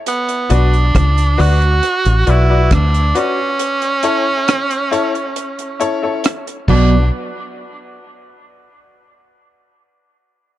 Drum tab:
CC |----------------|--------------x-|----------------|
HH |xxxxxxoxxxx-xxx-|xxx-xxxxxxx-xx--|----------------|
SD |----r-------r---|----r-------r---|----------------|
BD |----o-------o---|--------------o-|----------------|